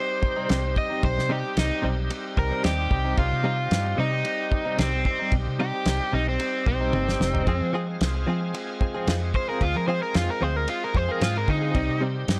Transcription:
Already playing: tonewheel organ G3 C4 D#4 G4, overdriven electric guitar C5
0.22 muted clean electric guitar stroke, kick
0.36 clean electric guitar C3 G3 C4 D#4
0.49 fingered electric bass C2, clean electric guitar C3 G3 C4 D#4, snare, ride bell
0.64 muted clean electric guitar stroke
0.76 overdriven electric guitar D#5, muted clean electric guitar stroke, kick
0.90 clean electric guitar G3 C4 D#4
1.03 fingered electric bass B1, overdriven electric guitar C5, kick, ride bell
1.17 fingered electric bass C3, muted clean electric guitar stroke, snare
1.29 clean electric guitar C3 G3 C4 D#4, overdriven electric guitar G4
1.44 muted clean electric guitar stroke
1.57 fingered electric bass C2, overdriven electric guitar D#4, snare, ride bell
1.71 muted clean electric guitar stroke
1.82 fingered electric bass B1, clean electric guitar C3 G3 C4 D#4
2.10 muted clean electric guitar stroke, ride bell
2.37 fingered electric bass C2, overdriven electric guitar A#4, muted clean electric guitar stroke, kick
2.51 clean electric guitar C3 G3 C4 D#4
2.63 fingered electric bass D#2, clean electric guitar C3 G3 C4 D#4, overdriven electric guitar G4, snare, ride bell
2.90 fingered electric bass C2, muted clean electric guitar stroke, kick
3.04 clean electric guitar G3 C4 D#4
3.17 fingered electric bass C2, tonewheel organ G3 C4 D#4 G4, overdriven electric guitar F4, kick, ride bell
3.31 fingered electric bass C3, muted clean electric guitar stroke
3.43 clean electric guitar C3 G3 C4 D#4
3.59 muted clean electric guitar stroke
3.71 fingered electric bass G2, snare, ride bell
3.85 muted clean electric guitar stroke
3.97 clean electric guitar C3 G3 C4 D#4, fingered electric bass C3, overdriven electric guitar D#4
4.25 muted clean electric guitar stroke, ride bell
4.51 muted clean electric guitar stroke, kick
4.65 clean electric guitar C3 G3 C4 D#4
4.77 fingered electric bass C2, clean electric guitar C3 G3 C4 D#4, overdriven electric guitar C4, snare, ride bell
4.92 muted clean electric guitar stroke
5.05 overdriven electric guitar C4, muted clean electric guitar stroke, kick
5.19 clean electric guitar G3 C4 D#4
5.32 fingered electric bass B1, kick, ride bell
5.47 fingered electric bass C3, muted clean electric guitar stroke
5.59 clean electric guitar C3 G3 C4 D#4, overdriven electric guitar G4
5.74 muted clean electric guitar stroke
5.86 fingered electric bass C2, snare, ride bell
6.01 muted clean electric guitar stroke
6.13 fingered electric bass B1, clean electric guitar C3 G3 C4 D#4, overdriven electric guitar D#4
6.27 overdriven electric guitar C4, muted clean electric guitar stroke
6.40 muted clean electric guitar stroke, ride bell
6.66 fingered electric bass B1, overdriven electric guitar C4, muted clean electric guitar stroke, kick
6.81 clean electric guitar C3 G3 C4 D#4
6.92 fingered electric bass G1, clean electric guitar C3 G3 C4 D#4, high tom
7.07 muted clean electric guitar stroke, snare
7.20 fingered electric bass F1, muted clean electric guitar stroke, snare
7.34 clean electric guitar G3 C4 D#4, floor tom
7.46 fingered electric bass F2, clean electric guitar F3 C4 F4 G#4, tonewheel organ G#3 C4 F4 G#4, kick, ride bell
7.61 fingered electric bass F3, muted clean electric guitar stroke
7.73 clean electric guitar F3 C4 F4 G#4
7.88 muted clean electric guitar stroke
8.01 fingered electric bass C2, snare, ride bell
8.15 muted clean electric guitar stroke
8.27 clean electric guitar F3 C4 F4 G#4, fingered electric bass F3
8.41 muted clean electric guitar stroke
8.54 muted clean electric guitar stroke, ride bell
8.81 muted clean electric guitar stroke, kick
8.95 clean electric guitar F3 C4 F4 G#4
9.06 fingered electric bass F2, clean electric guitar F3 C4 F4 G#4, snare, ride bell
9.22 muted clean electric guitar stroke
9.34 overdriven electric guitar C5, muted clean electric guitar stroke, kick
9.49 clean electric guitar C4 F4 G#4, overdriven electric guitar A#4
9.61 fingered electric bass D2, overdriven electric guitar F4, kick, ride bell
9.75 fingered electric bass F3, overdriven electric guitar A#4, muted clean electric guitar stroke
9.88 clean electric guitar F3 C4 F4 G#4, overdriven electric guitar C5
10.03 overdriven electric guitar A#4, muted clean electric guitar stroke
10.14 fingered electric bass F2, overdriven electric guitar F4, snare, ride bell
10.29 overdriven electric guitar A#4, muted clean electric guitar stroke
10.41 fingered electric bass D2, clean electric guitar F3 C4 F4 G#4, overdriven electric guitar C5
10.56 overdriven electric guitar A#4, muted clean electric guitar stroke
10.68 overdriven electric guitar F4, muted clean electric guitar stroke, ride bell
10.84 overdriven electric guitar A#4
10.95 fingered electric bass F2, overdriven electric guitar C5, muted clean electric guitar stroke, kick
11.09 clean electric guitar F3 C4 F4 G#4, overdriven electric guitar A#4
11.20 fingered electric bass G#2, clean electric guitar F3 C4 F4 G#4, overdriven electric guitar F4, snare, ride bell
11.36 overdriven electric guitar A#4, muted clean electric guitar stroke
11.48 fingered electric bass D3, overdriven electric guitar D#4, muted clean electric guitar stroke, kick
11.62 clean electric guitar C4 F4 G#4
11.74 fingered electric bass C2, clean electric guitar C3 G3 C4 D#4, tonewheel organ G3 C4 D#4 G4, kick, ride bell
11.88 fingered electric bass C3, muted clean electric guitar stroke
12.01 clean electric guitar C3 G3 C4 D#4
12.28 fingered electric bass G2, snare, ride bell

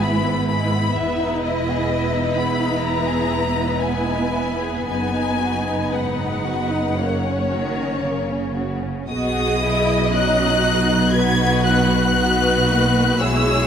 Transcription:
Already playing: double bass section G#1, cello section G#2, viola section B3, violin section B4
0.02 viola section E4, violin section E4 B5
0.27 violin section B3
0.49 violin section G#3 B5
0.75 violin section B3
0.96 double bass section E1, cello section E2, viola section B3, violin section B3 B4 E5
1.21 violin section D#4
1.44 violin section E4 D#5
1.70 violin section G#4
1.90 violin section E4
2.14 violin section D#4
2.36 violin section B3 B5
2.61 violin section D#4
2.84 violin section E4 A#5
3.08 violin section G#4
3.32 violin section E4
3.56 violin section D#4
3.79 violin section B3 G#5
4.04 violin section D#4
4.31 violin section E4
4.60 violin section G#4
4.87 double bass section F#1, cello section F#2, violin section B3 G#5, viola section D#4
5.14 violin section D#4
5.40 violin section F#4
5.67 violin section D#4
5.92 cello section G#2, violin section B3 F#5
6.18 violin section D#4
6.46 cello section F#2, violin section F#4
6.71 violin section D#4
6.98 viola section A#3 C#4, violin section A#3 C#5
7.24 violin section C#4
7.51 cello section D#3, violin section F#4
7.77 violin section C#4
8.04 cello section C#3, violin section A#3
8.30 violin section C#4
8.55 violin section F#4
8.82 violin section C#4
9.07 double bass section B1, cello section B2, viola section B3 G#4, violin section F#4 D#5 D#6
9.62 violin section E4
10.12 viola section C#4 F#4, violin section D#4 F#6
10.63 viola section D#4
11.12 viola section D#4, violin section F#4 B4 G#6
11.64 violin section F#6
12.17 viola section B3 D#4, violin section F#4 B4
12.68 viola section A#3
13.19 double bass section B1, cello section B2, viola section G#3 E4, violin section G#4 C#5 E6

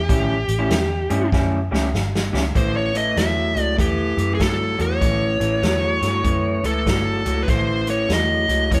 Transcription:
Already playing: lead electric guitar G4
0.09 fingered electric bass A1, clean electric guitar A2 G3 C#4 E4, kick, closed hi-hat
0.48 fingered electric bass A1, closed hi-hat
0.59 clean electric guitar A2 G3 C#4 E4
0.70 fingered electric bass E2, snare, closed hi-hat
1.10 fingered electric bass G2, clean electric guitar A2 G3 C#4 E4, closed hi-hat
1.32 fingered electric bass F#2, clean electric guitar A2 G3 C#4 E4, kick, snare
1.71 fingered electric bass C#2, clean electric guitar A2 G3 C#4 E4, snare
1.93 fingered electric bass G1, snare
2.15 snare
2.33 fingered electric bass C#2, clean electric guitar A2 G3 C#4 E4, snare
2.44 muted clean electric guitar stroke
2.55 fingered electric bass A1, clean electric guitar A2 E3, lead electric guitar C5, kick, closed hi-hat
2.77 lead electric guitar C#5
2.94 clean electric guitar A2 E3, lead electric guitar D#5, closed hi-hat
3.16 fingered electric bass E2, clean electric guitar A2 F#3, lead electric guitar E5, snare, closed hi-hat
3.55 fingered electric bass C#2, clean electric guitar A2 F#3, closed hi-hat
3.62 lead electric guitar D5
3.78 fingered electric bass E2, clean electric guitar A2 E3, lead electric guitar G4, kick, closed hi-hat
4.17 fingered electric bass F#2, clean electric guitar A2 E3, closed hi-hat
4.35 lead electric guitar G#4
4.39 fingered electric bass G2, clean electric guitar A2 F#3, lead electric guitar A4, kick, snare, closed hi-hat
4.78 fingered electric bass E2, clean electric guitar A2 F#3, lead electric guitar C#5, closed hi-hat
5.01 fingered electric bass A1, clean electric guitar A2 E3, kick, snare, closed hi-hat
5.40 fingered electric bass A1, clean electric guitar A2 E3, closed hi-hat
5.62 fingered electric bass E2, clean electric guitar A2 F#3, snare, closed hi-hat
6.02 fingered electric bass G2, clean electric guitar A2 F#3, snare, closed hi-hat
6.24 fingered electric bass F#2, clean electric guitar A2 E3, kick, closed hi-hat
6.63 fingered electric bass C#2, clean electric guitar A2 E3, lead electric guitar A4, closed hi-hat
6.86 fingered electric bass G1, clean electric guitar A2 F#3, kick, snare, closed hi-hat
7.25 fingered electric bass C#2, clean electric guitar A2 F#3, closed hi-hat
7.43 lead electric guitar B4
7.48 fingered electric bass A1, clean electric guitar A2 E3, lead electric guitar C5, kick, snare, closed hi-hat
7.87 clean electric guitar A2 E3, lead electric guitar C#5, closed hi-hat
8.09 fingered electric bass E2, clean electric guitar A2 F#3, snare, closed hi-hat
8.13 lead electric guitar D#5
8.48 fingered electric bass C#2, clean electric guitar A2 F#3, closed hi-hat
8.71 fingered electric bass E2, clean electric guitar A2 E3, lead electric guitar C#5, kick, closed hi-hat

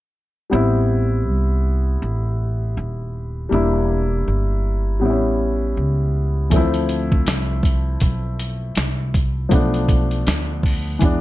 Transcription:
0.50 upright bass A1, upright piano G3 B3 C4
0.54 upright piano E4
1.27 upright bass C2
2.02 upright bass A1
2.77 upright bass D#1
3.49 upright bass E1, upright piano G3 A#3 D4
3.54 upright piano E4
4.28 upright bass G1
5.00 upright bass A1, upright piano G3 B3 C4
5.05 upright piano E4
5.10 upright piano C#4
5.77 upright bass C#2
6.50 upright bass D2, upright piano E3 A3 C4, kick, closed hi-hat
6.56 upright piano F3 E4
6.74 closed hi-hat
6.89 closed hi-hat
7.12 kick
7.27 upright bass C2, snare, closed hi-hat
7.63 kick, closed hi-hat
8.00 upright bass B1, kick, closed hi-hat
8.39 closed hi-hat
8.75 upright bass C2, snare, closed hi-hat
9.14 kick, closed hi-hat
9.49 upright bass B1, upright piano F3 A3 B3, kick, closed hi-hat
9.54 upright piano D4
9.74 closed hi-hat
9.89 kick, closed hi-hat
10.11 closed hi-hat
10.27 upright bass D2, snare, closed hi-hat
10.63 kick, open hi-hat
10.99 upright bass E2, upright piano E3 G#3 B3, kick, closed hi-hat
11.04 upright piano D4

